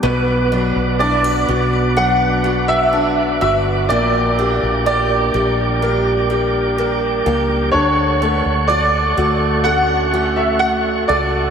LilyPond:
<<
  \new Staff \with { instrumentName = "Tonewheel organ" } { \time 4/4 \key b \minor \tempo 4 = 63 << { d'''1~ | d'''1 | cis'''1 | } \\ { <b' fis''>1 | <bes' g''>1 | <a' fis''>1 | } >> }
  \new Staff \with { instrumentName = "Grand piano" } { \time 4/4 \key b \minor b'4 d''4 fis''8. e''8. e''8 | d''4 d''2 r4 | cis''4 d''4 fis''8. e''16 fis''8 d''8 | }
  \new Staff \with { instrumentName = "Felt piano" } { \time 4/4 \key b \minor b,8 fis8 d'8 fis'8 fis8 fis'8 d'8 fis'8 | bes8 g'8 bes'8 g'8 bes'8 g'8 bes'8 bes8 | d'8 a4 fis'8 a8 fis'4 a'8 | }
  \new Staff \with { instrumentName = "Steel-string acoustic guitar" } { \time 4/4 \key b \minor b,8 d'8 e'16 fis'16 b8 d'8 b8 d'8 fis'8 | bes,8 d'8 g'8 g8 d'8 g8 d'8 g'8 | r8 b16 r16 fis'8 a8 cis'8 a4 fis'8 | }
  \new Staff \with { instrumentName = "Fretless electric bass" } { \clef bass \time 4/4 \key b \minor b,,8. b,,8. b,,2 g,,8 | bes,,8. bes,,8. bes,,2 cis,8 | d,8. d,8. d,2 cis,8 | }
>>